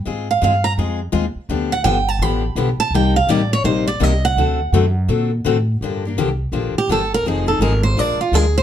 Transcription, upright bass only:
X:1
M:4/4
L:1/8
Q:"Swing" 1/4=167
K:Gm
V:1 name="Upright bass" clef=bass
_A,,2 G,,2 F,,2 E,, z | D,,2 G,,,2 A,,,2 =B,,, z | C,,2 A,,,2 B,,,2 C,,2 | D,,2 ^F,,2 B,,2 A,,2 |
G,,2 C,,2 B,,, z G,,,2 | F,,,2 _A,,,2 B,,, z D,,2 |]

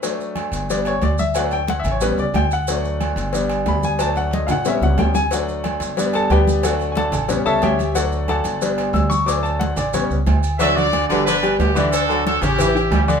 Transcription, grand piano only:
X:1
M:4/4
L:1/8
Q:1/4=182
K:D
V:1 name="Grand piano"
z4 d c d e | f g (3f e c B d g f- | f4 z2 b ^g | a f _e [=f^f] =e f g ^g |
f3 z2 [Aa] [GBdg]2 | [FAdf]2 [Adf^ga]2 z [Acea] [=Gce=g]2 | [FAdf]2 [Adfa]2 z2 e' c' | d' a f d c z3 |
[D,Dd] [D,Dd]2 [G,GB] [D,Dd] [G,GB]2 [D,Dd]- | [D,Dd] [F,FA]2 [C,Cc] [E,EG] [E,EG]2 [D,Dd] |]
V:2 name="Grand piano"
[F,A,D]4 [G,B,D] z3 | [F,A,D] z3 [G,B,C] z3 | [F,A,D]4 [G,B,D]4 | [F,A,D]4 [G,B,C]3 z |
[F,A,D]4 [G,B,D]4 | [F,A,D]3 z [G,B,C]3 z | [F,A,D]4 [G,B,D]3 z | [F,A,D]3 z [G,B,C] z3 |
z8 | z8 |]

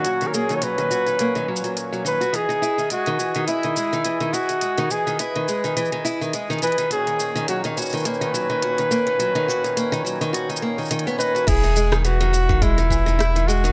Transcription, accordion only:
X:1
M:4/4
L:1/8
Q:"Swing 16ths" 1/4=105
K:Elyd
V:1 name="Accordion"
[A,,F,C]8 | [Gd]8- | [Gd]8 | [A,,D,C]8- |
[A,,D,C]8 | z8 |]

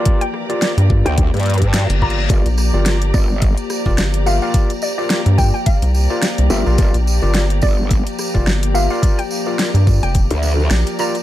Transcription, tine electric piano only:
X:1
M:4/4
L:1/16
Q:"Swing 16ths" 1/4=107
K:Gdor
V:1 name="Tine electric piano"
[FGBd] z2 [FGBd]2 z [FGBd] z6 z [FGBd] z | [FGBd] z2 [FGBd]2 z [FGBd] z4 [FGBd] z2 [FGBe] [FGBd] | [FGBd] z2 [FGBd]2 z [FGBd] z4 [FGBd] z2 [FGBe] [FGBd] | [FGBd] z2 [FGBd]2 z [FGBd] z4 [FGBd] z2 [FGBe] [FGBd] |
[FGBd] z2 [FGBd]2 z [FGBd] z6 z [FGBd] z |]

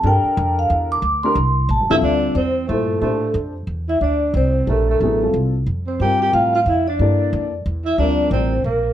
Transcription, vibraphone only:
X:1
M:3/4
L:1/8
Q:"Swing" 1/4=181
K:Gdor
V:1 name="Vibraphone"
g3 f z d'- | d' c'3 a e | [K:Dm] d2 c2 A2 | A2 z3 e |
d2 c2 A A | A2 z3 c | g g f f e d- | d3 z2 e |
d2 c2 B2 |]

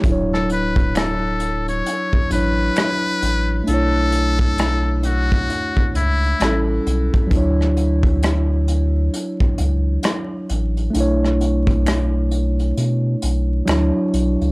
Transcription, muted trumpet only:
X:1
M:4/4
L:1/16
Q:"Swing 16ths" 1/4=66
K:D
V:1 name="Muted trumpet"
z A B2 A3 c3 B6 | A6 F4 E3 z3 | z16 | z16 |]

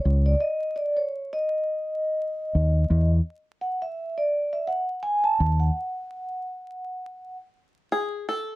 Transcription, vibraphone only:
X:1
M:4/4
L:1/16
Q:"Swing 16ths" 1/4=84
K:Emix
V:1 name="Vibraphone"
c d ^d2 =d c2 ^d8- d- | ^d z3 f e2 =d2 e f2 g a2 f- | f8- f z6 z |]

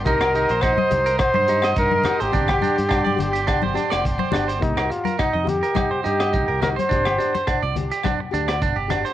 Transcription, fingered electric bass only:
X:1
M:4/4
L:1/16
Q:"Swing 16ths" 1/4=105
K:Cm
V:1 name="Fingered electric bass" clef=bass
C,,3 B,,,2 z C,,2 z G,,3 G,,2 z A,,, | G,,,2 z G,,3 G,,,3 G,,, z F,,,2 z G,,,2 | C,,2 z3 F,,2 z3 G,,2 C,, C,,2 z | G,,,2 z3 C,,2 z3 D,,2 G,,, G,,,2 z |]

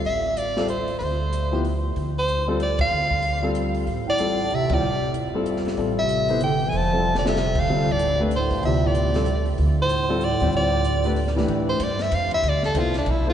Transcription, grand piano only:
X:1
M:3/4
L:1/8
Q:"Swing" 1/4=189
K:Ddor
V:1 name="Grand piano"
z3 [G,CFA] z2 | z3 [F,B,EG] z2 | z3 [G,CFA] z2 | z3 [G,CFA]3 |
z2 [G,CFA] z2 [G,CFG] | z3 [G,CFA]3 | [G,CFA]3 [B,EAc] z2 | z [G,CFA] z [G,CFA] z2 |
[G,CFA] z2 [A,DGB] z2 | [F,B,EG]3 [G,CFA] z2 | z3 [G,CFA] z [G,CFG]- | [G,CFG]2 z [A,DGB] z [E,A,DGB]- |
[E,A,DGB]2 z4 | z2 [B,EAc] z2 [B,EAc] |]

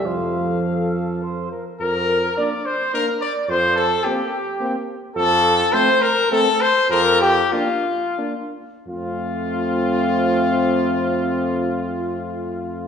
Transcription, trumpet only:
X:1
M:3/4
L:1/8
Q:1/4=101
K:F
V:1 name="Trumpet"
f4- f z | B2 d c B d | c A G3 z | A2 c B A c |
B G F3 z | F6- | F6 |]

